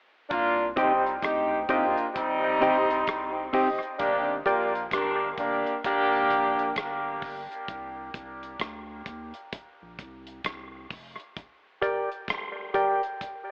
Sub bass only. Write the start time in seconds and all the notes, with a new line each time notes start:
0.32 C2
0.78 C2
1.23 D2
1.70 D#2
2.45 A#1
2.63 C2
3.08 C2
3.54 F1
4.00 G1
4.46 A#1
4.92 G1
5.38 G1
6.14 G#1
6.31 A#1
6.77 G1
7.69 C2
8.15 C2
8.60 D2
9.07 D#2
9.82 A#1
10.00 C2
10.45 C2
10.91 F1